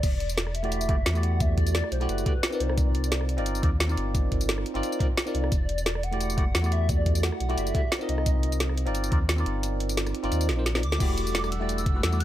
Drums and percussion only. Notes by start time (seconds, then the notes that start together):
0.03 kick, closed hi-hat, crash, tambourine
0.20 closed hi-hat
0.29 closed hi-hat, tambourine
0.38 snare, closed hi-hat, tambourine
0.47 cross-stick
0.55 closed hi-hat
0.64 closed hi-hat
0.72 closed hi-hat, tambourine
0.81 tambourine
0.89 kick, closed hi-hat
1.06 snare, closed hi-hat, tambourine
1.15 tambourine
1.23 closed hi-hat
1.40 kick, closed hi-hat, tambourine
1.58 kick, closed hi-hat
1.67 closed hi-hat, tambourine
1.75 snare, closed hi-hat, tambourine
1.84 cross-stick
1.92 closed hi-hat
2.01 closed hi-hat
2.09 closed hi-hat, tambourine
2.18 tambourine
2.26 kick, closed hi-hat
2.43 snare, closed hi-hat, tambourine
2.52 tambourine
2.60 closed hi-hat
2.70 cross-stick
2.78 kick, closed hi-hat, tambourine
2.95 closed hi-hat
3.04 closed hi-hat, tambourine
3.12 snare, closed hi-hat, tambourine
3.21 cross-stick
3.29 closed hi-hat
3.38 closed hi-hat
3.46 closed hi-hat, tambourine
3.55 tambourine
3.63 kick, closed hi-hat
3.80 snare, closed hi-hat, tambourine
3.89 tambourine
3.97 closed hi-hat
4.15 kick, closed hi-hat, tambourine
4.32 kick, closed hi-hat
4.41 closed hi-hat, tambourine
4.49 snare, closed hi-hat, tambourine
4.58 cross-stick
4.66 closed hi-hat
4.75 closed hi-hat
4.83 closed hi-hat, tambourine
4.92 tambourine
5.00 kick, closed hi-hat
5.17 snare, closed hi-hat, tambourine
5.27 tambourine
5.35 closed hi-hat
5.44 cross-stick
5.52 kick, closed hi-hat, tambourine
5.69 closed hi-hat
5.78 closed hi-hat, tambourine
5.86 snare, closed hi-hat, tambourine
5.95 cross-stick
6.03 closed hi-hat
6.13 closed hi-hat
6.21 closed hi-hat, tambourine
6.30 tambourine
6.38 kick, closed hi-hat
6.55 snare, closed hi-hat, tambourine
6.64 tambourine
6.72 closed hi-hat
6.89 kick, closed hi-hat, tambourine
7.06 kick, closed hi-hat
7.15 closed hi-hat, tambourine
7.23 snare, closed hi-hat, tambourine
7.32 cross-stick
7.40 closed hi-hat
7.50 closed hi-hat
7.58 closed hi-hat, tambourine
7.67 tambourine
7.75 kick, closed hi-hat
7.92 snare, closed hi-hat, tambourine
8.01 tambourine
8.09 closed hi-hat
8.18 cross-stick
8.26 kick, closed hi-hat, tambourine
8.43 closed hi-hat
8.52 closed hi-hat, tambourine
8.60 snare, closed hi-hat, tambourine
8.69 cross-stick
8.77 closed hi-hat
8.87 closed hi-hat
8.95 closed hi-hat, tambourine
9.04 tambourine
9.12 kick, closed hi-hat
9.29 snare, closed hi-hat, tambourine
9.38 tambourine
9.46 closed hi-hat
9.63 closed hi-hat, tambourine
9.80 closed hi-hat
9.89 closed hi-hat, tambourine
9.97 snare, closed hi-hat, tambourine
10.07 cross-stick, closed hi-hat, tambourine
10.15 closed hi-hat
10.24 closed hi-hat
10.32 closed hi-hat, tambourine
10.41 closed hi-hat, tambourine
10.49 snare, closed hi-hat
10.66 snare, closed hi-hat, tambourine
10.75 snare, tambourine
10.83 closed hi-hat
10.92 snare
11.00 kick, closed hi-hat, crash, tambourine
11.18 closed hi-hat, tambourine
11.27 tambourine
11.35 snare, closed hi-hat, tambourine
11.44 cross-stick, tambourine
11.52 closed hi-hat
11.69 closed hi-hat, tambourine
11.78 tambourine
11.86 kick, closed hi-hat
12.03 snare, closed hi-hat, tambourine
12.12 tambourine
12.20 closed hi-hat